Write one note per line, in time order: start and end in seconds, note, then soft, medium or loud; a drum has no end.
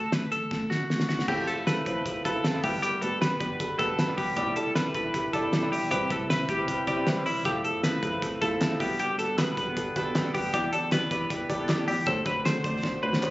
0.00 0.13 A4 medium
0.12 0.29 D2 medium
0.12 0.31 B4 medium
0.12 snare loud
0.12 closed hi-hat loud
0.31 0.48 D2 medium
0.31 0.68 A4 medium
0.31 closed hi-hat medium
0.51 0.67 D2 medium
0.51 kick medium
0.51 snare medium
0.70 0.87 D3 medium
0.70 1.07 F#4 medium
0.70 snare medium
0.90 1.06 D2 medium
0.90 snare medium
1.00 snare medium
1.09 1.25 D2 medium
1.09 1.28 F#4 medium
1.09 snare medium
1.19 snare medium
1.28 1.44 F2 loud
1.28 1.66 A3 medium
1.28 1.66 C4 medium
1.28 1.41 E4 loud
1.28 1.67 E4 medium
1.28 1.41 F4 loud
1.28 1.48 G4 medium
1.28 1.41 A4 loud
1.28 1.68 A4 medium
1.28 kick medium
1.28 crash medium
1.47 1.72 F2 medium
1.47 1.60 E4 medium
1.47 1.60 F4 medium
1.47 1.67 A4 medium
1.47 1.60 A4 medium
1.47 closed hi-hat medium
1.67 1.96 A3 medium
1.67 1.96 C4 medium
1.67 1.79 E4 medium
1.67 1.96 E4 medium
1.67 1.79 F4 medium
1.67 1.79 A4 medium
1.67 1.96 A4 medium
1.67 1.85 B4 medium
1.67 snare loud
1.67 closed hi-hat medium
1.86 2.10 F2 medium
1.86 1.99 E4 medium
1.86 1.99 F4 medium
1.86 2.23 B4 medium
1.86 1.99 C5 medium
1.86 kick medium
1.86 closed hi-hat medium
1.97 2.36 C4 soft
1.97 2.35 E4 medium
1.97 2.34 A4 medium
2.06 2.18 E4 medium
2.06 2.18 F4 medium
2.06 2.18 A4 medium
2.06 kick medium
2.06 closed hi-hat medium
2.25 2.41 F2 medium
2.25 2.37 E4 loud
2.25 2.37 F4 medium
2.25 2.61 A4 medium
2.25 2.37 B4 loud
2.25 kick medium
2.25 closed hi-hat medium
2.35 2.53 C4 soft
2.35 2.53 E4 soft
2.35 2.53 A4 medium
2.44 2.60 F2 medium
2.44 2.56 E4 loud
2.44 2.57 F4 medium
2.44 2.57 A4 loud
2.44 snare loud
2.44 closed hi-hat medium
2.54 2.63 F3 medium
2.54 2.63 A3 medium
2.54 2.64 C4 medium
2.54 2.64 E4 medium
2.54 2.64 A4 medium
2.63 2.95 G1 medium
2.63 3.25 G3 medium
2.63 3.20 B3 medium
2.63 3.21 D4 medium
2.63 2.95 F#4 medium
2.63 3.21 F#4 medium
2.63 2.95 G4 medium
2.63 2.81 G4 medium
2.63 2.95 B4 loud
2.63 3.23 B4 medium
2.63 kick medium
2.63 open hi-hat medium
2.82 3.02 G4 medium
2.82 closed hi-hat medium
3.02 3.26 G1 medium
3.02 3.14 F#4 medium
3.02 3.14 G4 medium
3.02 3.21 A4 medium
3.02 3.14 B4 medium
3.02 closed hi-hat medium
3.21 3.50 B3 medium
3.21 3.51 D4 medium
3.21 3.33 F#4 medium
3.21 3.50 F#4 medium
3.21 3.33 G4 medium
3.21 3.33 B4 medium
3.21 3.39 B4 medium
3.21 3.49 B4 medium
3.21 snare loud
3.21 closed hi-hat loud
3.40 3.64 G1 medium
3.40 3.52 F#4 medium
3.40 3.52 G4 medium
3.40 3.77 B4 medium
3.40 3.52 D5 medium
3.40 kick medium
3.40 closed hi-hat medium
3.50 3.91 D4 soft
3.50 3.89 F#4 medium
3.50 3.89 B4 medium
3.60 3.72 F#4 medium
3.60 3.72 G4 medium
3.60 3.72 A4 medium
3.60 kick medium
3.60 closed hi-hat medium
3.78 3.95 G1 medium
3.78 3.91 F#4 loud
3.78 3.91 G4 medium
3.78 4.15 A4 medium
3.78 3.91 B4 loud
3.78 kick medium
3.78 closed hi-hat medium
3.89 4.08 D4 soft
3.89 4.07 F#4 medium
3.89 4.07 B4 medium
3.98 4.15 G1 medium
3.98 4.10 F#4 loud
3.98 4.11 G4 loud
3.98 4.11 B4 loud
3.98 snare loud
3.98 closed hi-hat medium
4.08 4.36 G3 medium
4.08 4.37 B3 medium
4.08 4.37 D4 medium
4.08 4.37 F#4 medium
4.08 4.37 B4 medium
4.17 4.34 G1 medium
4.17 4.30 F#4 medium
4.17 4.35 G4 medium
4.17 4.30 G4 medium
4.17 4.30 B4 medium
4.17 kick medium
4.17 open hi-hat medium
4.37 4.53 E1 loud
4.37 4.75 G3 medium
4.37 4.75 D4 medium
4.37 4.49 E4 loud
4.37 4.76 E4 medium
4.37 4.56 G4 medium
4.37 4.49 G4 medium
4.37 4.77 B4 medium
4.37 4.49 D5 loud
4.37 kick loud
4.37 closed hi-hat medium
4.56 4.80 E1 medium
4.56 4.68 E4 medium
4.56 4.68 G4 medium
4.56 4.75 A4 medium
4.56 4.69 D5 medium
4.56 closed hi-hat medium
4.75 5.04 G3 medium
4.75 5.05 D4 medium
4.75 4.87 E4 medium
4.75 5.04 E4 medium
4.75 4.87 G4 medium
4.75 4.88 A4 medium
4.75 4.94 B4 medium
4.75 5.03 B4 medium
4.75 snare loud
4.75 closed hi-hat medium
4.94 5.18 E1 medium
4.94 5.07 E4 medium
4.94 5.07 G4 medium
4.94 5.07 A4 medium
4.94 5.31 B4 medium
4.94 kick medium
4.94 closed hi-hat medium
5.04 5.44 D4 medium
5.04 5.44 E4 soft
5.04 5.43 B4 medium
5.14 5.26 E4 medium
5.14 5.26 G4 medium
5.14 5.26 E5 medium
5.14 kick medium
5.14 closed hi-hat medium
5.33 5.49 E1 medium
5.33 5.46 E4 loud
5.33 5.46 G4 medium
5.33 5.70 A4 medium
5.33 5.46 D5 loud
5.33 kick medium
5.33 closed hi-hat medium
5.43 5.62 D4 soft
5.43 5.62 E4 soft
5.43 5.61 B4 soft
5.52 5.68 E1 loud
5.52 5.65 E4 loud
5.52 5.65 G4 loud
5.52 5.65 D5 loud
5.52 snare loud
5.52 closed hi-hat medium
5.63 5.92 E3 medium
5.63 5.90 G3 medium
5.63 5.92 D4 medium
5.63 5.92 E4 medium
5.63 5.91 B4 medium
5.72 5.88 E1 medium
5.72 5.84 E4 medium
5.72 5.90 G4 medium
5.72 5.84 G4 medium
5.72 5.85 D5 medium
5.72 open hi-hat medium
5.90 6.07 C2 loud
5.90 6.29 G3 medium
5.90 6.03 C4 loud
5.90 6.30 C4 medium
5.90 6.03 E4 loud
5.90 6.31 E4 medium
5.90 6.11 G4 medium
5.90 6.03 B4 loud
5.90 6.30 B4 medium
5.90 kick loud
5.90 closed hi-hat loud
6.10 6.34 C2 medium
6.10 6.23 C4 medium
6.10 6.23 E4 medium
6.10 6.30 A4 medium
6.10 6.23 B4 medium
6.10 kick medium
6.10 closed hi-hat medium
6.30 6.59 G3 medium
6.30 6.42 C4 medium
6.30 6.59 C4 medium
6.30 6.42 E4 medium
6.30 6.58 E4 medium
6.30 6.49 B4 medium
6.30 6.42 B4 medium
6.30 6.58 B4 medium
6.30 snare loud
6.30 closed hi-hat loud
6.49 6.73 C2 medium
6.49 6.61 C4 medium
6.49 6.61 E4 medium
6.49 6.86 G4 medium
6.49 6.61 G4 medium
6.49 kick medium
6.49 closed hi-hat medium
6.59 6.97 G3 soft
6.59 6.97 C4 medium
6.59 6.96 E4 medium
6.59 6.95 B4 medium
6.68 6.80 C4 medium
6.68 6.80 E4 medium
6.68 6.81 B4 medium
6.68 kick medium
6.68 closed hi-hat medium
6.86 7.03 C2 medium
6.86 6.99 C4 loud
6.86 6.99 E4 medium
6.86 7.24 G4 medium
6.86 6.99 D5 loud
6.86 kick medium
6.86 closed hi-hat medium
6.97 7.16 G3 soft
6.97 7.16 C4 soft
6.97 7.16 E4 soft
6.97 7.15 B4 medium
7.06 7.23 C2 medium
7.06 7.19 C4 loud
7.06 7.19 E4 loud
7.06 7.19 B4 loud
7.06 snare loud
7.06 closed hi-hat medium
7.17 7.46 C3 medium
7.17 7.45 E3 medium
7.17 7.46 G3 medium
7.17 7.46 C4 medium
7.17 7.46 E4 medium
7.17 7.46 B4 medium
7.26 7.42 C2 medium
7.26 7.38 C4 medium
7.26 7.45 E4 medium
7.26 7.38 E4 medium
7.26 7.38 C5 medium
7.26 open hi-hat medium
7.45 7.61 F2 loud
7.45 7.82 F3 medium
7.45 7.83 A3 medium
7.45 7.84 C4 medium
7.45 7.57 E4 loud
7.45 7.84 E4 medium
7.45 7.57 F4 loud
7.45 7.64 G4 loud
7.45 7.57 A4 loud
7.45 kick loud
7.45 closed hi-hat loud
7.64 7.88 F2 medium
7.64 7.76 E4 medium
7.64 7.77 F4 medium
7.64 7.83 A4 medium
7.64 7.77 A4 medium
7.64 closed hi-hat medium
7.83 8.13 F3 medium
7.83 8.13 A3 medium
7.83 8.13 C4 medium
7.83 7.96 E4 medium
7.83 8.11 E4 medium
7.83 7.96 F4 medium
7.83 7.96 A4 medium
7.83 8.02 B4 medium
7.83 snare loud
7.83 clap medium
7.83 closed hi-hat loud
8.02 8.26 F2 loud
8.02 8.15 E4 medium
8.02 8.15 F4 medium
8.02 8.16 A4 medium
8.02 8.39 B4 medium
8.02 kick medium
8.02 closed hi-hat medium
8.13 8.52 A3 soft
8.13 8.51 C4 medium
8.13 8.50 E4 medium
8.22 8.34 E4 medium
8.22 8.34 F4 medium
8.22 8.34 A4 medium
8.22 kick medium
8.22 closed hi-hat loud
8.42 8.58 F2 medium
8.42 8.54 E4 loud
8.42 8.54 F4 loud
8.42 8.78 A4 medium
8.42 8.54 A4 loud
8.42 kick medium
8.42 closed hi-hat medium
8.51 8.70 A3 soft
8.51 8.70 C4 soft
8.51 8.70 E4 medium
8.61 8.77 F2 medium
8.61 8.73 E4 loud
8.61 8.73 F4 loud
8.61 8.73 A4 loud
8.61 snare loud
8.61 clap medium
8.61 closed hi-hat medium
8.71 8.79 F3 medium
8.71 8.80 A3 medium
8.71 8.81 C4 medium
8.71 8.80 E4 medium
8.80 9.12 G1 medium
8.80 9.38 G3 medium
8.80 9.39 B3 medium
8.80 9.39 D4 medium
8.80 9.11 F#4 medium
8.80 9.39 F#4 medium
8.80 8.99 G4 medium
8.80 9.11 G4 medium
8.80 9.11 B4 medium
8.80 kick medium
8.80 open hi-hat medium
8.99 9.18 G4 medium
8.99 closed hi-hat medium
9.18 9.42 G1 medium
9.18 9.31 F#4 medium
9.18 9.31 G4 medium
9.18 9.38 A4 medium
9.18 9.31 A4 medium
9.18 closed hi-hat medium
9.38 9.67 G3 medium
9.38 9.67 B3 medium
9.38 9.68 D4 medium
9.38 9.50 F#4 medium
9.38 9.66 F#4 medium
9.38 9.50 G4 medium
9.38 9.57 B4 medium
9.38 9.51 B4 loud
9.38 snare loud
9.38 clap loud
9.38 closed hi-hat loud
9.57 9.81 G1 medium
9.57 9.69 F#4 medium
9.57 9.69 G4 medium
9.57 9.70 A4 medium
9.57 9.96 B4 medium
9.57 kick medium
9.57 closed hi-hat medium
9.67 10.08 B3 medium
9.67 10.06 D4 medium
9.67 10.04 F#4 medium
9.76 9.88 F#4 medium
9.76 9.88 G4 medium
9.76 9.89 A4 medium
9.76 kick medium
9.76 closed hi-hat medium
9.95 10.12 G1 medium
9.95 10.07 F#4 loud
9.95 10.08 G4 medium
9.95 10.32 A4 medium
9.95 10.08 B4 loud
9.95 kick medium
9.95 closed hi-hat medium
10.05 10.25 B3 soft
10.05 10.24 D4 medium
10.05 10.23 F#4 medium
10.15 10.31 G1 medium
10.15 10.27 F#4 loud
10.15 10.27 G4 loud
10.15 10.27 B4 loud
10.15 snare loud
10.15 clap medium
10.15 closed hi-hat medium
10.25 10.53 G3 medium
10.25 10.53 B3 medium
10.25 10.53 D4 medium
10.25 10.53 F#4 medium
10.34 10.50 G1 medium
10.34 10.46 F#4 medium
10.34 10.52 G4 medium
10.34 10.46 G4 medium
10.34 10.46 B4 loud
10.34 kick medium
10.34 open hi-hat medium
10.53 10.69 E2 loud
10.53 10.91 E3 medium
10.53 10.91 B3 medium
10.53 10.93 D4 medium
10.53 10.65 E4 loud
10.53 10.72 G4 medium
10.53 10.66 G4 loud
10.53 10.93 G4 medium
10.53 10.66 D5 loud
10.53 kick loud
10.53 closed hi-hat medium
10.72 10.96 E2 medium
10.72 10.85 E4 medium
10.72 10.85 G4 medium
10.72 10.92 A4 medium
10.72 10.85 D5 loud
10.72 closed hi-hat medium
10.92 11.21 E3 medium
10.92 11.21 B3 medium
10.92 11.20 D4 medium
10.92 11.04 E4 medium
10.92 11.04 G4 medium
10.92 11.19 G4 medium
10.92 11.10 B4 medium
10.92 11.04 B4 loud
10.92 snare loud
10.92 clap medium
10.92 closed hi-hat loud
11.11 11.35 E2 medium
11.11 11.23 E4 medium
11.11 11.23 G4 medium
11.11 11.49 B4 medium
11.11 11.23 D5 loud
11.11 kick medium
11.11 closed hi-hat medium
11.20 11.60 B3 medium
11.20 11.60 D4 medium
11.20 11.58 G4 medium
11.30 11.42 E4 medium
11.30 11.42 G4 medium
11.30 11.42 D5 medium
11.30 kick medium
11.30 closed hi-hat medium
11.49 11.65 E2 medium
11.49 11.61 E4 loud
11.49 11.61 G4 medium
11.49 11.86 A4 medium
11.49 11.61 D5 loud
11.49 kick medium
11.49 closed hi-hat medium
11.59 11.78 B3 soft
11.59 11.78 D4 soft
11.59 11.77 G4 medium
11.68 11.84 E2 loud
11.68 11.81 E4 loud
11.68 11.81 G4 loud
11.68 11.81 D5 loud
11.68 snare loud
11.68 clap medium
11.68 closed hi-hat medium
11.79 12.07 E3 medium
11.79 12.07 B3 medium
11.79 12.08 D4 medium
11.79 12.07 G4 medium
11.87 12.03 E2 loud
11.87 12.00 E4 medium
11.87 12.07 G4 medium
11.87 12.00 G4 medium
11.87 12.00 D5 medium
11.87 open hi-hat medium
12.06 12.23 D2 loud
12.06 12.45 D3 medium
12.06 12.45 A3 medium
12.06 12.46 C4 medium
12.06 12.19 D4 loud
12.06 12.19 F#4 loud
12.06 12.46 F#4 medium
12.06 12.26 A4 loud
12.06 12.19 C5 loud
12.06 kick loud
12.06 closed hi-hat medium
12.26 12.38 D4 medium
12.26 12.38 F#4 medium
12.26 12.45 B4 medium
12.26 12.38 C5 medium
12.26 kick loud
12.26 closed hi-hat medium
12.45 12.74 D3 medium
12.45 12.75 A3 medium
12.45 12.74 C4 medium
12.45 12.58 D4 medium
12.45 12.58 F#4 medium
12.45 12.73 F#4 medium
12.45 12.58 A4 loud
12.45 12.63 C5 medium
12.45 snare loud
12.45 clap medium
12.45 closed hi-hat loud
12.64 12.88 D2 medium
12.64 12.77 D4 medium
12.64 12.77 F#4 medium
12.64 13.01 C5 medium
12.64 12.77 D5 medium
12.64 kick medium
12.64 closed hi-hat medium
12.74 13.13 A3 soft
12.74 13.12 C4 medium
12.74 13.11 F#4 medium
12.84 12.96 D4 medium
12.84 12.96 F#4 medium
12.84 12.96 C5 medium
12.84 kick medium
12.84 snare medium
13.02 13.19 D2 medium
13.02 13.15 D4 loud
13.02 13.15 F#4 loud
13.02 13.30 B4 medium
13.02 13.15 C5 loud
13.12 13.30 A3 soft
13.12 13.30 C4 soft
13.12 13.30 F#4 medium
13.12 snare medium
13.22 13.30 D2 medium
13.22 13.30 D4 loud
13.22 13.30 F#4 loud
13.22 13.30 C5 loud
13.22 clap loud